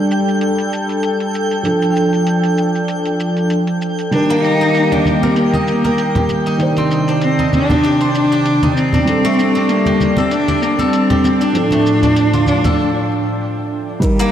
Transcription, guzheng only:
4.30 7.52 A#3 medium
4.61 6.46 D#4 medium
4.92 6.15 G4 medium
5.23 5.84 A#4 medium
5.54 7.15 D#5 medium
5.85 7.97 A#4 medium
6.16 7.70 G4 medium
6.47 7.15 D#4 medium
6.78 9.78 C4 medium
7.09 7.45 D4 medium
7.39 8.63 D#4 medium
7.70 7.84 G4 medium
7.84 8.32 G4 medium
8.01 9.99 C5 medium
8.32 9.86 G4 medium
8.63 9.00 D#4 medium
8.94 9.55 D4 medium
9.25 11.72 A3 medium
9.55 11.41 D4 medium
9.86 11.10 G4 medium
10.18 10.79 A4 medium
10.48 12.33 D5 medium
10.79 12.65 A4 medium
11.10 13.45 G4 medium
11.41 12.03 D4 medium
11.72 14.26 A3 medium
12.03 14.32 D4 medium
12.34 14.32 F4 medium
12.65 14.26 A4 medium
14.20 14.32 A#3 loud

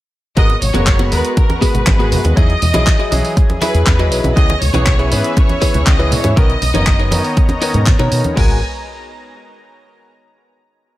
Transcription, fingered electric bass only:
0.37 0.54 G#1 medium
0.62 0.71 G#1 loud
0.75 1.14 F#1 medium
1.12 1.20 D#2 medium
1.75 1.83 G#1 medium
1.87 2.14 G#1 medium
2.12 2.20 F#2 medium
2.25 2.33 D#2 medium
2.37 2.54 E2 loud
2.62 2.71 E2 loud
2.74 2.83 B1 medium
3.12 3.20 B1 medium
3.74 3.83 E2 medium
3.87 4.12 E2 medium
4.12 4.20 B1 medium
4.24 4.33 B1 medium
4.37 4.54 C#2 loud
4.62 4.70 C#2 loud
4.74 5.13 B1 medium
5.12 5.20 G#2 medium
5.74 5.83 C#2 medium
5.87 6.13 C#2 medium
6.12 6.20 B2 medium
6.24 6.33 G#2 medium
6.37 6.54 B1 loud
6.62 6.70 B1 loud
6.74 7.13 F#1 medium
7.12 7.20 F#2 medium
7.74 7.91 G#2 loud
8.00 8.08 B2 loud
8.12 8.20 B2 medium
8.37 8.60 G#1 loud

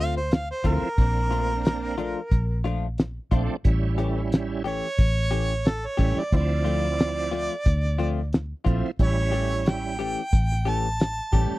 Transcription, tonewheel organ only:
0.64 0.89 F3 medium
0.64 0.89 C4 medium
0.64 0.90 E4 medium
0.98 1.96 A#3 medium
0.98 1.96 C4 medium
0.98 1.96 D4 medium
3.31 3.56 A3 medium
3.31 3.57 C4 medium
3.31 3.57 D4 medium
3.64 4.63 G3 medium
3.64 4.63 C#4 medium
3.64 4.63 E4 medium
5.99 6.24 G3 medium
5.99 6.24 C#4 medium
5.99 6.24 E4 medium
6.33 7.30 F3 medium
6.33 7.31 C4 medium
6.33 7.31 E4 medium
8.66 8.91 F3 medium
8.66 8.91 C4 medium
8.66 8.91 E4 medium
8.99 9.97 G3 medium
8.99 9.97 C#4 medium
8.99 9.97 E4 medium
11.32 11.57 G3 medium
11.32 11.58 C#4 medium
11.32 11.58 G4 medium

